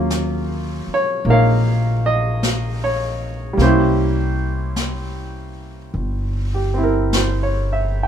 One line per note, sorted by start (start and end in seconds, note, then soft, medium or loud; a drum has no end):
0.00 0.84 D#2 medium
0.00 3.58 F#3 soft
0.00 1.25 A#3 soft
0.00 3.59 C#4 soft
0.00 3.59 F4 soft
0.00 3.59 G#4 soft
0.10 brush sweep soft
0.10 snare soft
0.10 hi-hat pedal soft
0.87 muted upright bass stroke soft
0.94 1.26 C#5 medium
1.25 3.54 A#1 medium
1.25 3.56 A#3 soft
1.25 3.59 D#4 soft
1.25 brush sweep soft
1.30 3.56 A#4 medium
1.30 2.82 C#5 soft
1.30 2.01 F5 medium
2.06 2.84 D#5 medium
2.43 brush sweep soft
2.43 snare soft
2.43 hi-hat pedal soft
2.84 3.62 C#5 medium
3.53 8.08 G3 soft
3.57 5.89 C2 medium
3.57 8.08 A#3 soft
3.57 8.08 C#4 soft
3.57 brush sweep soft
3.57 snare soft
3.62 5.92 E4 soft
3.62 5.92 G4 soft
3.62 5.53 C5 medium
4.76 brush sweep soft
4.76 snare soft
4.76 hi-hat pedal soft
5.94 8.08 G1 medium
5.94 brush sweep soft
6.54 6.90 G4 soft
6.74 8.08 C4 soft
6.74 8.08 E4 soft
6.83 7.24 A#4 soft
7.13 7.70 C5 soft
7.13 brush sweep soft
7.13 snare soft
7.13 hi-hat pedal soft
7.43 7.94 C#5 soft
7.73 8.08 E5 soft
8.03 8.08 G5 soft